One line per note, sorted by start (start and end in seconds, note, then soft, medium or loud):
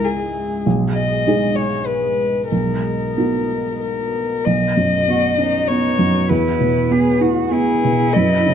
0.00 0.68 C#2 soft
0.00 0.61 G#3 soft
0.00 2.52 G#3 soft
0.00 0.61 E4 soft
0.00 0.62 G#4 soft
0.00 2.52 G#4 soft
0.00 0.64 G#4 medium
0.00 0.65 E5 soft
0.65 1.24 B1 soft
0.65 4.46 D#5 soft
0.94 1.57 D#5 soft
1.27 2.48 G#3 soft
1.27 2.48 D#4 soft
1.27 2.48 G#4 soft
1.56 1.88 C#5 medium
1.86 2.50 B4 soft
2.50 3.14 B1 soft
2.50 4.46 B3 soft
2.50 4.46 F#4 soft
2.50 3.77 A#4 soft
3.17 4.42 B3 soft
3.17 4.42 D#4 soft
3.17 4.42 F#4 soft
3.80 4.46 A#4 soft
4.45 6.26 B1 soft
4.45 8.12 B3 soft
4.45 6.26 F#4 soft
4.45 6.26 C#5 soft
4.45 5.69 D#5 medium
4.77 5.26 F#2 soft
5.08 5.56 B3 soft
5.08 5.36 F#4 soft
5.38 5.87 C#4 soft
5.38 6.29 D#4 soft
5.68 6.18 B3 soft
5.68 6.31 C#5 medium
5.99 6.30 F#2 soft
6.30 8.12 E2 soft
6.30 6.93 E4 soft
6.30 8.16 G#4 soft
6.30 7.21 B4 soft
6.30 8.16 B4 medium
6.60 7.09 B2 soft
6.91 7.39 B3 soft
6.91 7.23 G#4 soft
7.21 7.70 E4 soft
7.21 7.54 F#4 soft
7.51 8.02 B3 soft
7.51 8.54 E4 medium
7.51 8.15 G#4 medium
7.84 8.16 B2 soft
8.14 8.54 F#2 soft
8.14 8.54 C#4 soft
8.14 8.54 F#4 soft
8.14 8.54 A#4 medium
8.14 8.54 D#5 medium
8.46 8.54 C#3 soft